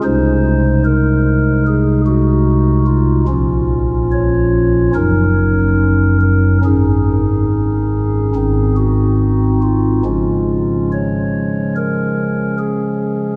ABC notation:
X:1
M:4/4
L:1/8
Q:1/4=72
K:Abmix
V:1 name="Pipe organ"
c2 B2 A G2 F- | F2 d2 B3 B | A4- A G2 F- | F2 d2 B2 A2 |]
V:2 name="Pipe organ" clef=bass
[C,,C,A,E]8 | [B,,,B,,F,DF]4 [G,,,G,,G,DE]4 | [A,,,A,,E,DE]4 [A,,,A,,E,CE]4 | [D,F,A,D]8 |]